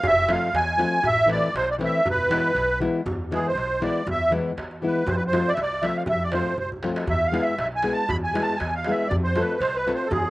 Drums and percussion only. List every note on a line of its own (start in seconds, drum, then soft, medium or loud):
0.03 darbuka dum loud
0.17 darbuka tek soft
0.29 darbuka tek medium
0.55 darbuka tek medium
0.68 darbuka tek soft
0.79 darbuka tek medium
0.94 darbuka tek soft
1.03 darbuka dum medium
1.19 darbuka tek soft
1.30 darbuka tek medium
1.56 darbuka tek medium
1.70 darbuka tek soft
1.81 darbuka tek medium
1.96 darbuka tek soft
2.06 darbuka dum medium
2.20 darbuka tek soft
2.31 darbuka tek medium
2.45 darbuka tek soft
2.56 darbuka tek medium
2.70 darbuka tek soft
2.82 darbuka tek medium
3.06 darbuka dum medium
3.32 darbuka tek medium
3.46 darbuka tek soft
3.57 darbuka tek medium
3.72 darbuka tek soft
3.82 darbuka tek medium
3.97 darbuka tek soft
4.07 darbuka dum medium
4.32 darbuka tek medium
4.46 darbuka tek soft
4.58 darbuka tek medium
4.71 darbuka tek soft
4.96 darbuka tek soft
5.07 darbuka dum loud
5.33 darbuka tek medium
5.47 darbuka tek soft
5.57 darbuka tek medium
5.73 darbuka tek soft
5.83 darbuka tek medium
5.97 darbuka tek soft
6.06 darbuka dum medium
6.20 darbuka tek soft
6.32 darbuka tek medium
6.46 darbuka dum medium
6.58 darbuka dum medium
6.72 darbuka dum medium
6.83 darbuka tek medium
6.96 darbuka tek medium
7.08 darbuka dum medium
7.34 darbuka tek medium
7.48 darbuka tek soft
7.58 darbuka tek medium
7.72 darbuka tek soft
7.83 darbuka tek medium
7.98 darbuka tek soft
8.09 darbuka dum medium
8.35 darbuka tek medium
8.49 darbuka tek soft
8.60 darbuka tek medium
8.74 darbuka tek soft
8.84 darbuka tek medium
8.99 darbuka tek soft
9.11 darbuka dum medium
9.36 darbuka tek medium
9.51 darbuka tek soft
9.62 darbuka tek medium
9.77 darbuka tek soft
9.88 darbuka tek medium
10.01 darbuka tek soft
10.12 darbuka dum loud
10.25 darbuka tek soft